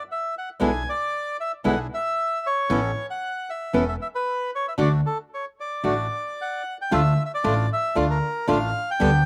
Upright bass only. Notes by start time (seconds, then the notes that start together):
0.62 B1
1.65 B1
2.70 A1
3.74 E1
4.79 D2
5.84 A1
6.93 D2
7.45 A1
7.97 D2
8.49 A1
9.01 D2